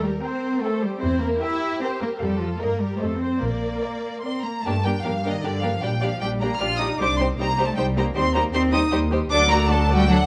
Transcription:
Already playing: D#2 A#4
0.04 G3 G4
0.24 C4 A#4 C5 G5
0.63 A3 A4 A#4 C5 G5
0.83 G3 G4
1.02 E2 C4 E4 C5
1.22 A#3 A#4
1.41 E4 G4 A#4 E5 G5
1.81 C4 A#4 C5 G5
2.01 A#3 A#4
2.20 F2 G3 G4 A4 F5
2.41 F3 F4
2.60 G2 A#3 A#4 D#5
2.80 G3 G4
2.99 F2 A3 A4 C5 D#5
3.20 C4 C5
3.41 A#1 A#3 A#4 D5
3.83 A#4 D5
4.22 C4 A#4 D5 C6
4.43 A#3 A#5
4.64 G2 A3 A#3 D4 G4 A#4 A5
4.83 G3 A#3 D4 G4 A#4 G5
5.03 G2 F3 A#3 D4 G4 A#4 F5
5.23 A#3 D4 G4 A#4
5.29 D#3 D#5
5.43 G2 D3 A#3 D4 G4 A#4 D5
5.61 F3 A#3 D4 G4 A#4 F5
5.81 A#1 G3 D4 G4 D5 G5
6.01 F3 G3 D4 G4 D5 F5
6.21 A#1 G3 D4 G4 D5 G5
6.41 G3 A#3 D4 G4 D5 A#5
6.60 A#1 G3 D4 F4 G4 D5 F6
6.79 G3 D4 D#4 G4 D5 D#6
7.00 C2 G3 D4 D#4 G4 C5 D6
7.18 G3 C4 D#4 G4 C5 C6
7.38 C2 G3 A#3 D#4 G4 C5 A#5
7.57 G3 D#4 G4 C5
7.64 A3 A5
7.76 C2 G3 D#4 G4 C5 G5
7.96 G3 A#3 D#4 G4 C5 A#5
8.15 D#2 G3 C4 D#4 G4 C5 C6
8.34 G3 A#3 D#4 G4 C5 A#5
8.53 D#2 G3 C4 D#4 G4 C5 C6
8.72 G3 D#4 G4 C5 D#6
8.91 D#2 G3 D#4 G4 C5
9.11 G3 D#4 G4 C5
9.31 D2 F#3 D4 A4 D6
9.49 A3 A#3 F#4 D5 A#5
9.69 F#3 A3 D4 A4 A5
9.89 A3 F#4 D5
9.96 G3 G5
10.09 F#3 D4 A4 F#5

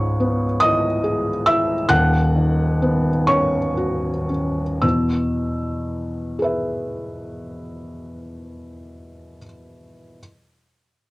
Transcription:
Already playing: C#2 G#2 C#5 C#6
0.20 B3
0.60 E4 D#5 D#6
1.04 G#4
1.46 E4 E5 E6
1.89 D#1 D#2 F#5 F#6
2.36 D#3
2.82 B3
3.27 C#4 C#5 C#6
3.77 F#4
4.29 C#4
4.82 E2 B2 E6
6.39 G#4 B4
6.44 E5

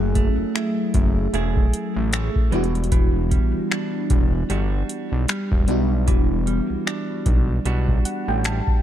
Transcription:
Already playing: F#1 F#3 A3 C#4 E4 G#4
0.15 A3, kick, closed hi-hat
0.38 F#1
0.55 E4, finger snap
0.94 F#1, kick, closed hi-hat
1.33 E1 A3 E4 G#4, closed hi-hat
1.56 kick
1.73 closed hi-hat
1.96 A1
2.13 A3, finger snap, closed hi-hat
2.36 kick
2.51 E1 E3 G3 B3 D4 E4, closed hi-hat
2.55 F#4
2.64 closed hi-hat
2.75 closed hi-hat
2.84 closed hi-hat
2.92 E3, kick, closed hi-hat
3.31 G3, kick, closed hi-hat
3.54 E1
3.71 D4, finger snap
4.10 E1, kick, closed hi-hat
4.50 G1 G3 D4 F#4, closed hi-hat
4.89 closed hi-hat
5.12 B1
5.28 G3, finger snap, closed hi-hat
5.52 E1, kick
5.66 B1 G3 B3 D4 E4, closed hi-hat
5.71 F#4
6.08 E1 E3, kick, closed hi-hat
6.47 G3, closed hi-hat
6.70 B1
6.87 D4, finger snap
7.26 B1, kick, closed hi-hat
7.66 B1 G3 D4 F#4, closed hi-hat
7.88 kick
8.05 F#5, closed hi-hat
8.28 A1 G5
8.44 G3 A5, finger snap, closed hi-hat
8.67 kick

